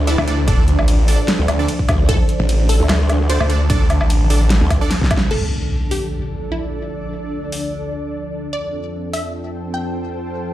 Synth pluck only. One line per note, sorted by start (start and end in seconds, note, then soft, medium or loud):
0.07 2.01 E4 medium
2.09 2.62 A4 loud
2.69 3.22 A4 loud
3.30 5.24 C5 medium
5.31 5.84 A4 medium
5.91 6.44 G4 medium
6.52 8.46 E4 medium
8.53 9.06 D5 loud
9.13 9.66 E5 medium
9.74 10.54 G5 medium